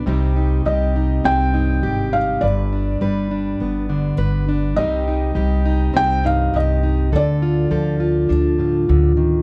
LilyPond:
<<
  \new Staff \with { instrumentName = "Felt piano" } { \time 4/4 \key c \minor \tempo 4 = 102 r4 ees''4 g''4. f''8 | d''2. r4 | ees''2 g''8 f''8 ees''4 | d''2 r2 | }
  \new Staff \with { instrumentName = "Steel-string acoustic guitar" } { \time 4/4 \key c \minor << { <g c' ees' g'>8 ees'8 g'8 ees'8 c'8 ees'8 g'8 ees'8 | b'8 d'8 b'8 d'8 b8 d'8 b'8 d'8 | <g c' ees' g'>8 ees'8 g'8 ees'8 c'8 ees'8 g'8 ees'8 | a'8 f'8 a'8 f'8 d'8 f'4. | } \\ { c4 g4. g,4. | g,4 g4. d4. | c4 g4. g,4. | d4 f4. a,8 d8 ees8 | } >> }
  \new Staff \with { instrumentName = "Upright bass" } { \clef bass \time 4/4 \key c \minor c,4 c,4 c,4 aes,,4 | g,,4 g,,4 g,,4 g,,4 | c,4 c,4 c,4 c,4 | d,4 d,4 d,4 d,4 | }
>>